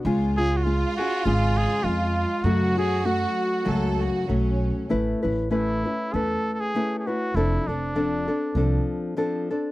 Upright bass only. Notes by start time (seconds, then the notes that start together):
0.05 C#2
1.25 G#1
1.84 F2
2.44 F#2
3.67 C#2
4.29 B1
4.91 A1
5.24 A1
6.14 E2
7.34 F1
7.67 F1
8.55 C2